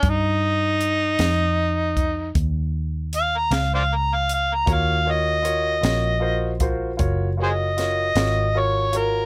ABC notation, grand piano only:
X:1
M:12/8
L:1/8
Q:3/8=52
K:Eb
V:1 name="Grand piano"
z12 | [F_GB_d] [FGBd] [FGBd] [FGBd] [FGBc] [FGBc] [FGBd] [FGBd] [FGBd] [FGBd] [FGBd] [FGBd] |]